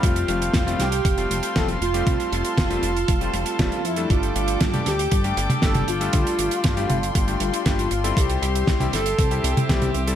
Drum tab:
HH |xxxxxxxxxxxxxxxx|xxxxxxxxxxxxxxxx|xxxxxxxxxxxxxxxx|xxxxxxxxxxxxxxxx|
SD |----o-o-----o---|----o-------o---|----o-o-----o---|----o-------o---|
T1 |----------------|----------------|-----o-----o-o--|------o---------|
BD |o---o---o---o---|o---o---o---o---|o---o---o---o---|o---o---o---o---|

HH |xxxxxxxxxxxxxxxx|
SD |----o-o-----o---|
T1 |-----o-----o-o--|
BD |o---o---o---o---|